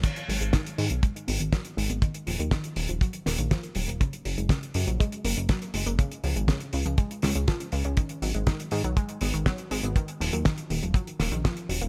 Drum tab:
CC |x---------------|----------------|----------------|----------------|
HH |xxoxxxoxxxoxxxox|xxoxxxoxxxoxxxox|xxoxxxoxxxoxxxox|xxoxxxoxxxoxxxox|
SD |----o-------o---|----o-----o-o---|----o-------o---|----o-----o-o---|
BD |o---o---o---o---|o---o---o---o---|o---o---o---o---|o---o---o---o---|

CC |----------------|----------------|
HH |xxoxxxoxxxoxxxox|xxoxxxoxxxoxxxox|
SD |----o-------o---|----o-----o-o---|
BD |o---o---o---o---|o---o---o---o---|